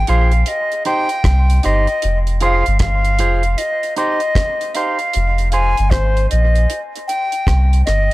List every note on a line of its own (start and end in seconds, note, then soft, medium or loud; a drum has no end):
0.00 0.10 G5 loud
0.07 0.44 A#1 medium
0.07 0.31 F4 medium
0.07 0.31 G#4 medium
0.07 0.31 C5 loud
0.07 0.50 F5 loud
0.07 closed hi-hat medium
0.31 closed hi-hat medium
0.46 0.86 D#5 loud
0.46 closed hi-hat medium
0.72 closed hi-hat soft
0.85 1.08 D#4 medium
0.85 1.08 G4 medium
0.85 1.09 C5 medium
0.85 1.67 G5 loud
0.85 closed hi-hat medium
1.09 closed hi-hat medium
1.24 1.60 C2 loud
1.24 kick loud
1.24 cross-stick loud
1.24 closed hi-hat medium
1.50 closed hi-hat medium
1.63 1.87 G1 medium
1.63 1.86 D#4 medium
1.63 1.86 G4 medium
1.63 1.87 C5 medium
1.63 2.19 D#5 medium
1.63 closed hi-hat medium
1.87 muted clean electric guitar stroke soft
1.87 closed hi-hat soft
2.02 2.63 F1 loud
2.02 closed hi-hat medium
2.27 closed hi-hat medium
2.41 2.64 F4 medium
2.41 2.64 G#4 loud
2.41 2.64 C5 loud
2.41 2.78 F5 loud
2.41 closed hi-hat medium
2.66 2.80 G1 medium
2.66 closed hi-hat medium
2.79 3.23 G1 medium
2.79 3.59 F5 loud
2.79 kick loud
2.79 cross-stick loud
2.79 closed hi-hat loud
3.05 closed hi-hat soft
3.19 3.56 F1 medium
3.19 3.42 F4 medium
3.19 3.42 G#4 medium
3.19 3.42 C5 medium
3.19 closed hi-hat medium
3.43 closed hi-hat soft
3.58 3.97 D#5 loud
3.58 closed hi-hat medium
3.83 closed hi-hat soft
3.96 4.19 D#4 medium
3.96 4.20 G4 medium
3.96 4.20 C5 loud
3.96 4.76 D#5 loud
3.96 closed hi-hat medium
4.20 closed hi-hat medium
4.35 kick loud
4.35 cross-stick loud
4.35 closed hi-hat medium
4.61 closed hi-hat medium
4.75 4.97 D#4 medium
4.75 4.98 G4 medium
4.75 4.98 C5 medium
4.75 5.52 F5 medium
4.75 closed hi-hat medium
4.99 muted clean electric guitar stroke soft
4.99 closed hi-hat soft
5.13 5.74 F1 loud
5.13 closed hi-hat medium
5.38 closed hi-hat soft
5.52 5.75 F4 medium
5.52 5.75 G#4 medium
5.52 5.76 C5 medium
5.52 5.92 G#5 loud
5.52 closed hi-hat medium
5.77 5.91 G1 medium
5.77 closed hi-hat soft
5.90 6.27 G#1 medium
5.90 6.29 C5 medium
5.90 kick loud
5.90 cross-stick loud
5.90 closed hi-hat medium
6.17 closed hi-hat soft
6.30 6.67 A#1 medium
6.30 6.81 D#5 medium
6.30 closed hi-hat medium
6.55 closed hi-hat soft
6.70 closed hi-hat medium
6.96 closed hi-hat soft
7.08 7.82 G5 loud
7.08 closed hi-hat medium
7.32 closed hi-hat medium
7.47 7.83 C2 loud
7.47 kick loud
7.47 cross-stick loud
7.47 closed hi-hat medium
7.73 closed hi-hat medium
7.86 8.09 G1 medium
7.86 8.14 D#5 loud
7.86 cross-stick medium
7.86 closed hi-hat medium